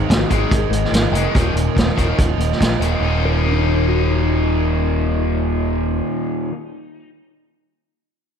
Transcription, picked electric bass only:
0.10 0.23 G#1 medium
0.31 0.44 G#1 medium
0.51 0.65 G#1 medium
0.71 0.84 G#1 medium
0.92 1.06 G#1 medium
1.12 1.26 F1 medium
1.35 1.48 D#1 medium
1.54 1.68 D#1 medium
1.76 1.90 D#1 medium
1.98 2.11 D#1 medium
2.18 2.32 D#1 medium
2.38 2.52 D#1 medium
2.61 2.74 A#1 medium
2.80 2.94 D#1 medium
3.00 6.00 D#1 medium

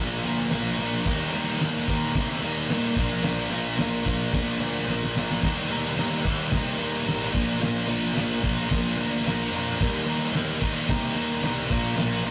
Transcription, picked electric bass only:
0.00 0.20 A#1 loud
0.24 0.48 D2 loud
0.51 0.76 A#1 loud
0.78 1.02 A#1 loud
1.05 1.30 D#2 loud
1.33 1.57 D#2 medium
1.60 1.85 D#2 loud
1.88 2.12 D#2 medium
2.15 2.40 C3 medium
2.42 2.67 D#2 loud
2.69 2.94 A#2 loud
2.96 3.21 A#1 loud
3.24 3.49 A#1 loud
3.50 3.75 A#1 medium
3.77 4.03 A#1 loud
4.05 4.31 A#1 medium
4.33 4.58 A#1 medium
4.59 4.85 D2 medium
4.86 5.12 A#1 loud
5.15 5.40 A#1 medium
5.43 5.68 D#2 loud
5.68 5.94 D#2 medium
5.96 6.22 D#2 medium
6.24 6.49 D#2 medium
6.51 6.76 C3 loud
6.77 7.03 D#2 loud
7.04 7.30 A1 loud
7.34 7.58 A#1 medium
7.59 7.85 A#1 loud
7.85 8.12 A#1 medium
8.14 8.40 A#1 loud
8.43 8.68 A#1 medium
8.71 8.95 A#1 loud
8.96 9.22 D2 medium
9.23 9.49 A#1 loud
9.51 9.76 F2 loud
9.80 10.05 D#2 loud
10.05 10.31 D#2 loud
10.32 10.58 D#2 medium
10.61 10.86 D#2 medium
10.88 11.13 C3 loud
11.15 11.40 D#2 medium
11.42 11.67 C2 loud
11.70 11.95 A#1 medium
11.97 12.22 A#1 loud
12.24 12.31 A#1 medium

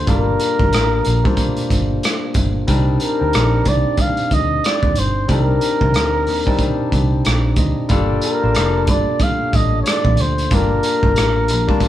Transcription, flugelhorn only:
0.09 2.00 A#4 medium
3.03 3.70 A#4 medium
3.68 4.02 D5 medium
4.01 4.35 F5 medium
4.34 4.67 D#5 medium
4.66 5.00 D5 medium
4.99 5.30 C5 medium
5.31 7.22 A#4 medium
8.25 8.92 A#4 medium
8.90 9.25 D5 medium
9.23 9.57 F5 loud
9.55 9.81 D#5 medium
9.82 9.90 C#5 medium
9.89 10.22 D5 medium
10.21 10.56 C5 medium
10.55 11.88 A#4 medium

